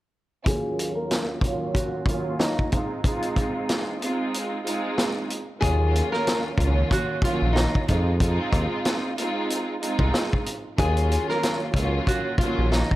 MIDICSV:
0, 0, Header, 1, 5, 480
1, 0, Start_track
1, 0, Tempo, 645161
1, 342, Time_signature, 4, 2, 24, 8
1, 9641, End_track
2, 0, Start_track
2, 0, Title_t, "Nylon-string guitar"
2, 0, Program_c, 0, 24
2, 352, Note_on_c, 0, 68, 101
2, 698, Note_off_c, 0, 68, 0
2, 709, Note_on_c, 0, 70, 71
2, 928, Note_off_c, 0, 70, 0
2, 1295, Note_on_c, 0, 66, 77
2, 1514, Note_off_c, 0, 66, 0
2, 1555, Note_on_c, 0, 65, 75
2, 1766, Note_off_c, 0, 65, 0
2, 1783, Note_on_c, 0, 63, 72
2, 1999, Note_off_c, 0, 63, 0
2, 4171, Note_on_c, 0, 68, 101
2, 4527, Note_off_c, 0, 68, 0
2, 4555, Note_on_c, 0, 70, 82
2, 4771, Note_off_c, 0, 70, 0
2, 5153, Note_on_c, 0, 66, 80
2, 5364, Note_off_c, 0, 66, 0
2, 5387, Note_on_c, 0, 65, 80
2, 5598, Note_off_c, 0, 65, 0
2, 5601, Note_on_c, 0, 63, 77
2, 5827, Note_off_c, 0, 63, 0
2, 8031, Note_on_c, 0, 68, 99
2, 8377, Note_off_c, 0, 68, 0
2, 8404, Note_on_c, 0, 70, 77
2, 8616, Note_off_c, 0, 70, 0
2, 8987, Note_on_c, 0, 66, 84
2, 9201, Note_off_c, 0, 66, 0
2, 9215, Note_on_c, 0, 65, 82
2, 9435, Note_off_c, 0, 65, 0
2, 9462, Note_on_c, 0, 63, 76
2, 9641, Note_off_c, 0, 63, 0
2, 9641, End_track
3, 0, Start_track
3, 0, Title_t, "String section"
3, 0, Program_c, 1, 48
3, 338, Note_on_c, 1, 39, 87
3, 339, Note_on_c, 1, 54, 81
3, 341, Note_on_c, 1, 58, 85
3, 343, Note_on_c, 1, 61, 85
3, 344, Note_on_c, 1, 65, 102
3, 1009, Note_off_c, 1, 39, 0
3, 1009, Note_off_c, 1, 54, 0
3, 1010, Note_off_c, 1, 58, 0
3, 1011, Note_off_c, 1, 61, 0
3, 1012, Note_off_c, 1, 65, 0
3, 1055, Note_on_c, 1, 39, 89
3, 1057, Note_on_c, 1, 54, 78
3, 1058, Note_on_c, 1, 58, 84
3, 1060, Note_on_c, 1, 61, 86
3, 1062, Note_on_c, 1, 65, 97
3, 1505, Note_off_c, 1, 39, 0
3, 1506, Note_off_c, 1, 54, 0
3, 1506, Note_off_c, 1, 58, 0
3, 1507, Note_off_c, 1, 61, 0
3, 1508, Note_off_c, 1, 65, 0
3, 1547, Note_on_c, 1, 39, 96
3, 1548, Note_on_c, 1, 54, 94
3, 1549, Note_on_c, 1, 58, 84
3, 1551, Note_on_c, 1, 61, 86
3, 1553, Note_on_c, 1, 65, 102
3, 1990, Note_off_c, 1, 39, 0
3, 1991, Note_off_c, 1, 54, 0
3, 1992, Note_off_c, 1, 58, 0
3, 1993, Note_off_c, 1, 61, 0
3, 1994, Note_off_c, 1, 65, 0
3, 2022, Note_on_c, 1, 56, 79
3, 2023, Note_on_c, 1, 60, 68
3, 2025, Note_on_c, 1, 63, 70
3, 2027, Note_on_c, 1, 65, 78
3, 2245, Note_off_c, 1, 56, 0
3, 2246, Note_off_c, 1, 60, 0
3, 2247, Note_off_c, 1, 63, 0
3, 2248, Note_off_c, 1, 65, 0
3, 2261, Note_on_c, 1, 56, 90
3, 2263, Note_on_c, 1, 60, 87
3, 2265, Note_on_c, 1, 63, 86
3, 2267, Note_on_c, 1, 65, 105
3, 2930, Note_off_c, 1, 56, 0
3, 2931, Note_off_c, 1, 60, 0
3, 2932, Note_off_c, 1, 63, 0
3, 2933, Note_off_c, 1, 65, 0
3, 2982, Note_on_c, 1, 56, 87
3, 2983, Note_on_c, 1, 60, 83
3, 2986, Note_on_c, 1, 63, 81
3, 2988, Note_on_c, 1, 65, 94
3, 3428, Note_off_c, 1, 56, 0
3, 3429, Note_off_c, 1, 60, 0
3, 3430, Note_off_c, 1, 63, 0
3, 3431, Note_off_c, 1, 65, 0
3, 3453, Note_on_c, 1, 56, 99
3, 3454, Note_on_c, 1, 60, 84
3, 3456, Note_on_c, 1, 63, 86
3, 3459, Note_on_c, 1, 65, 96
3, 3903, Note_off_c, 1, 56, 0
3, 3904, Note_off_c, 1, 60, 0
3, 3905, Note_off_c, 1, 63, 0
3, 3906, Note_off_c, 1, 65, 0
3, 4178, Note_on_c, 1, 39, 88
3, 4180, Note_on_c, 1, 54, 81
3, 4182, Note_on_c, 1, 58, 88
3, 4184, Note_on_c, 1, 61, 87
3, 4185, Note_on_c, 1, 65, 100
3, 4849, Note_off_c, 1, 39, 0
3, 4850, Note_off_c, 1, 54, 0
3, 4851, Note_off_c, 1, 58, 0
3, 4852, Note_off_c, 1, 61, 0
3, 4852, Note_off_c, 1, 65, 0
3, 4897, Note_on_c, 1, 39, 95
3, 4898, Note_on_c, 1, 54, 80
3, 4900, Note_on_c, 1, 58, 82
3, 4902, Note_on_c, 1, 61, 88
3, 4902, Note_on_c, 1, 65, 97
3, 5345, Note_off_c, 1, 39, 0
3, 5346, Note_off_c, 1, 54, 0
3, 5347, Note_off_c, 1, 58, 0
3, 5348, Note_off_c, 1, 61, 0
3, 5348, Note_off_c, 1, 65, 0
3, 5389, Note_on_c, 1, 39, 96
3, 5390, Note_on_c, 1, 54, 96
3, 5391, Note_on_c, 1, 58, 84
3, 5393, Note_on_c, 1, 61, 86
3, 5394, Note_on_c, 1, 65, 101
3, 5831, Note_off_c, 1, 39, 0
3, 5832, Note_off_c, 1, 54, 0
3, 5833, Note_off_c, 1, 58, 0
3, 5833, Note_off_c, 1, 61, 0
3, 5834, Note_off_c, 1, 65, 0
3, 5862, Note_on_c, 1, 56, 77
3, 5865, Note_on_c, 1, 60, 68
3, 5866, Note_on_c, 1, 63, 70
3, 5868, Note_on_c, 1, 65, 79
3, 6085, Note_off_c, 1, 56, 0
3, 6086, Note_off_c, 1, 60, 0
3, 6087, Note_off_c, 1, 63, 0
3, 6088, Note_off_c, 1, 65, 0
3, 6101, Note_on_c, 1, 56, 90
3, 6103, Note_on_c, 1, 60, 87
3, 6105, Note_on_c, 1, 63, 85
3, 6107, Note_on_c, 1, 65, 104
3, 6770, Note_off_c, 1, 56, 0
3, 6771, Note_off_c, 1, 60, 0
3, 6772, Note_off_c, 1, 63, 0
3, 6773, Note_off_c, 1, 65, 0
3, 6823, Note_on_c, 1, 56, 90
3, 6825, Note_on_c, 1, 60, 82
3, 6827, Note_on_c, 1, 63, 81
3, 6829, Note_on_c, 1, 65, 97
3, 7268, Note_off_c, 1, 56, 0
3, 7269, Note_off_c, 1, 60, 0
3, 7270, Note_off_c, 1, 63, 0
3, 7272, Note_off_c, 1, 65, 0
3, 7293, Note_on_c, 1, 56, 97
3, 7294, Note_on_c, 1, 60, 83
3, 7296, Note_on_c, 1, 63, 91
3, 7299, Note_on_c, 1, 65, 97
3, 7744, Note_off_c, 1, 56, 0
3, 7744, Note_off_c, 1, 60, 0
3, 7745, Note_off_c, 1, 63, 0
3, 7746, Note_off_c, 1, 65, 0
3, 8018, Note_on_c, 1, 39, 90
3, 8020, Note_on_c, 1, 54, 83
3, 8021, Note_on_c, 1, 58, 89
3, 8023, Note_on_c, 1, 61, 88
3, 8024, Note_on_c, 1, 65, 103
3, 8689, Note_off_c, 1, 39, 0
3, 8690, Note_off_c, 1, 54, 0
3, 8690, Note_off_c, 1, 58, 0
3, 8691, Note_off_c, 1, 61, 0
3, 8692, Note_off_c, 1, 65, 0
3, 8738, Note_on_c, 1, 39, 96
3, 8738, Note_on_c, 1, 54, 85
3, 8740, Note_on_c, 1, 58, 84
3, 8742, Note_on_c, 1, 61, 92
3, 8743, Note_on_c, 1, 65, 104
3, 9186, Note_off_c, 1, 39, 0
3, 9186, Note_off_c, 1, 54, 0
3, 9187, Note_off_c, 1, 58, 0
3, 9188, Note_off_c, 1, 61, 0
3, 9188, Note_off_c, 1, 65, 0
3, 9230, Note_on_c, 1, 39, 100
3, 9231, Note_on_c, 1, 54, 95
3, 9232, Note_on_c, 1, 58, 85
3, 9234, Note_on_c, 1, 61, 87
3, 9235, Note_on_c, 1, 65, 103
3, 9641, Note_off_c, 1, 39, 0
3, 9641, Note_off_c, 1, 54, 0
3, 9641, Note_off_c, 1, 58, 0
3, 9641, Note_off_c, 1, 61, 0
3, 9641, Note_off_c, 1, 65, 0
3, 9641, End_track
4, 0, Start_track
4, 0, Title_t, "Analog synth bass"
4, 0, Program_c, 2, 38
4, 4187, Note_on_c, 2, 39, 111
4, 4477, Note_off_c, 2, 39, 0
4, 4895, Note_on_c, 2, 37, 95
4, 5086, Note_off_c, 2, 37, 0
4, 5521, Note_on_c, 2, 34, 86
4, 5707, Note_off_c, 2, 34, 0
4, 5872, Note_on_c, 2, 41, 101
4, 6245, Note_off_c, 2, 41, 0
4, 6346, Note_on_c, 2, 39, 93
4, 6449, Note_off_c, 2, 39, 0
4, 7435, Note_on_c, 2, 36, 90
4, 7519, Note_off_c, 2, 36, 0
4, 8026, Note_on_c, 2, 39, 113
4, 8317, Note_off_c, 2, 39, 0
4, 8735, Note_on_c, 2, 37, 101
4, 8926, Note_off_c, 2, 37, 0
4, 9361, Note_on_c, 2, 34, 85
4, 9547, Note_off_c, 2, 34, 0
4, 9641, End_track
5, 0, Start_track
5, 0, Title_t, "Drums"
5, 343, Note_on_c, 9, 36, 114
5, 349, Note_on_c, 9, 42, 96
5, 418, Note_off_c, 9, 36, 0
5, 423, Note_off_c, 9, 42, 0
5, 588, Note_on_c, 9, 42, 75
5, 663, Note_off_c, 9, 42, 0
5, 824, Note_on_c, 9, 42, 90
5, 827, Note_on_c, 9, 38, 101
5, 828, Note_on_c, 9, 40, 81
5, 898, Note_off_c, 9, 42, 0
5, 901, Note_off_c, 9, 38, 0
5, 902, Note_off_c, 9, 40, 0
5, 1052, Note_on_c, 9, 36, 92
5, 1070, Note_on_c, 9, 42, 79
5, 1126, Note_off_c, 9, 36, 0
5, 1144, Note_off_c, 9, 42, 0
5, 1300, Note_on_c, 9, 36, 89
5, 1310, Note_on_c, 9, 42, 89
5, 1375, Note_off_c, 9, 36, 0
5, 1384, Note_off_c, 9, 42, 0
5, 1530, Note_on_c, 9, 36, 94
5, 1550, Note_on_c, 9, 42, 68
5, 1605, Note_off_c, 9, 36, 0
5, 1625, Note_off_c, 9, 42, 0
5, 1782, Note_on_c, 9, 38, 112
5, 1783, Note_on_c, 9, 40, 91
5, 1790, Note_on_c, 9, 42, 88
5, 1856, Note_off_c, 9, 38, 0
5, 1858, Note_off_c, 9, 40, 0
5, 1864, Note_off_c, 9, 42, 0
5, 1927, Note_on_c, 9, 36, 88
5, 2001, Note_off_c, 9, 36, 0
5, 2023, Note_on_c, 9, 42, 74
5, 2029, Note_on_c, 9, 36, 91
5, 2098, Note_off_c, 9, 42, 0
5, 2104, Note_off_c, 9, 36, 0
5, 2263, Note_on_c, 9, 36, 110
5, 2269, Note_on_c, 9, 42, 95
5, 2338, Note_off_c, 9, 36, 0
5, 2343, Note_off_c, 9, 42, 0
5, 2399, Note_on_c, 9, 42, 50
5, 2474, Note_off_c, 9, 42, 0
5, 2503, Note_on_c, 9, 36, 94
5, 2509, Note_on_c, 9, 42, 73
5, 2577, Note_off_c, 9, 36, 0
5, 2584, Note_off_c, 9, 42, 0
5, 2745, Note_on_c, 9, 42, 93
5, 2748, Note_on_c, 9, 38, 102
5, 2750, Note_on_c, 9, 40, 82
5, 2820, Note_off_c, 9, 42, 0
5, 2823, Note_off_c, 9, 38, 0
5, 2824, Note_off_c, 9, 40, 0
5, 2991, Note_on_c, 9, 42, 79
5, 3066, Note_off_c, 9, 42, 0
5, 3231, Note_on_c, 9, 42, 94
5, 3305, Note_off_c, 9, 42, 0
5, 3472, Note_on_c, 9, 42, 69
5, 3547, Note_off_c, 9, 42, 0
5, 3704, Note_on_c, 9, 38, 113
5, 3705, Note_on_c, 9, 40, 90
5, 3712, Note_on_c, 9, 42, 91
5, 3778, Note_off_c, 9, 38, 0
5, 3780, Note_off_c, 9, 40, 0
5, 3786, Note_off_c, 9, 42, 0
5, 3945, Note_on_c, 9, 42, 74
5, 4019, Note_off_c, 9, 42, 0
5, 4184, Note_on_c, 9, 36, 114
5, 4191, Note_on_c, 9, 42, 94
5, 4259, Note_off_c, 9, 36, 0
5, 4265, Note_off_c, 9, 42, 0
5, 4431, Note_on_c, 9, 42, 76
5, 4505, Note_off_c, 9, 42, 0
5, 4560, Note_on_c, 9, 38, 37
5, 4634, Note_off_c, 9, 38, 0
5, 4665, Note_on_c, 9, 42, 92
5, 4668, Note_on_c, 9, 38, 102
5, 4669, Note_on_c, 9, 40, 82
5, 4739, Note_off_c, 9, 42, 0
5, 4742, Note_off_c, 9, 38, 0
5, 4744, Note_off_c, 9, 40, 0
5, 4893, Note_on_c, 9, 36, 92
5, 4911, Note_on_c, 9, 42, 78
5, 4967, Note_off_c, 9, 36, 0
5, 4985, Note_off_c, 9, 42, 0
5, 5141, Note_on_c, 9, 36, 93
5, 5150, Note_on_c, 9, 42, 94
5, 5215, Note_off_c, 9, 36, 0
5, 5224, Note_off_c, 9, 42, 0
5, 5371, Note_on_c, 9, 36, 100
5, 5391, Note_on_c, 9, 42, 67
5, 5445, Note_off_c, 9, 36, 0
5, 5466, Note_off_c, 9, 42, 0
5, 5623, Note_on_c, 9, 38, 113
5, 5624, Note_on_c, 9, 40, 91
5, 5631, Note_on_c, 9, 42, 91
5, 5697, Note_off_c, 9, 38, 0
5, 5699, Note_off_c, 9, 40, 0
5, 5705, Note_off_c, 9, 42, 0
5, 5767, Note_on_c, 9, 36, 90
5, 5842, Note_off_c, 9, 36, 0
5, 5865, Note_on_c, 9, 42, 73
5, 5870, Note_on_c, 9, 36, 92
5, 5939, Note_off_c, 9, 42, 0
5, 5944, Note_off_c, 9, 36, 0
5, 6103, Note_on_c, 9, 36, 114
5, 6109, Note_on_c, 9, 42, 96
5, 6178, Note_off_c, 9, 36, 0
5, 6184, Note_off_c, 9, 42, 0
5, 6343, Note_on_c, 9, 36, 100
5, 6349, Note_on_c, 9, 42, 76
5, 6417, Note_off_c, 9, 36, 0
5, 6424, Note_off_c, 9, 42, 0
5, 6585, Note_on_c, 9, 42, 95
5, 6588, Note_on_c, 9, 38, 100
5, 6590, Note_on_c, 9, 40, 83
5, 6659, Note_off_c, 9, 42, 0
5, 6662, Note_off_c, 9, 38, 0
5, 6664, Note_off_c, 9, 40, 0
5, 6830, Note_on_c, 9, 42, 79
5, 6904, Note_off_c, 9, 42, 0
5, 7070, Note_on_c, 9, 42, 93
5, 7144, Note_off_c, 9, 42, 0
5, 7311, Note_on_c, 9, 42, 69
5, 7385, Note_off_c, 9, 42, 0
5, 7432, Note_on_c, 9, 36, 92
5, 7506, Note_off_c, 9, 36, 0
5, 7542, Note_on_c, 9, 38, 115
5, 7544, Note_on_c, 9, 40, 92
5, 7550, Note_on_c, 9, 42, 92
5, 7617, Note_off_c, 9, 38, 0
5, 7618, Note_off_c, 9, 40, 0
5, 7625, Note_off_c, 9, 42, 0
5, 7687, Note_on_c, 9, 36, 89
5, 7761, Note_off_c, 9, 36, 0
5, 7784, Note_on_c, 9, 42, 75
5, 7859, Note_off_c, 9, 42, 0
5, 8023, Note_on_c, 9, 36, 120
5, 8029, Note_on_c, 9, 42, 97
5, 8098, Note_off_c, 9, 36, 0
5, 8103, Note_off_c, 9, 42, 0
5, 8159, Note_on_c, 9, 42, 52
5, 8234, Note_off_c, 9, 42, 0
5, 8269, Note_on_c, 9, 42, 76
5, 8344, Note_off_c, 9, 42, 0
5, 8400, Note_on_c, 9, 38, 38
5, 8474, Note_off_c, 9, 38, 0
5, 8505, Note_on_c, 9, 42, 94
5, 8508, Note_on_c, 9, 38, 101
5, 8510, Note_on_c, 9, 40, 83
5, 8580, Note_off_c, 9, 42, 0
5, 8583, Note_off_c, 9, 38, 0
5, 8584, Note_off_c, 9, 40, 0
5, 8733, Note_on_c, 9, 36, 94
5, 8751, Note_on_c, 9, 42, 82
5, 8807, Note_off_c, 9, 36, 0
5, 8825, Note_off_c, 9, 42, 0
5, 8981, Note_on_c, 9, 36, 94
5, 8990, Note_on_c, 9, 42, 92
5, 9055, Note_off_c, 9, 36, 0
5, 9065, Note_off_c, 9, 42, 0
5, 9211, Note_on_c, 9, 36, 101
5, 9232, Note_on_c, 9, 42, 69
5, 9285, Note_off_c, 9, 36, 0
5, 9306, Note_off_c, 9, 42, 0
5, 9463, Note_on_c, 9, 38, 114
5, 9464, Note_on_c, 9, 40, 91
5, 9471, Note_on_c, 9, 42, 92
5, 9537, Note_off_c, 9, 38, 0
5, 9539, Note_off_c, 9, 40, 0
5, 9545, Note_off_c, 9, 42, 0
5, 9607, Note_on_c, 9, 36, 88
5, 9641, Note_off_c, 9, 36, 0
5, 9641, End_track
0, 0, End_of_file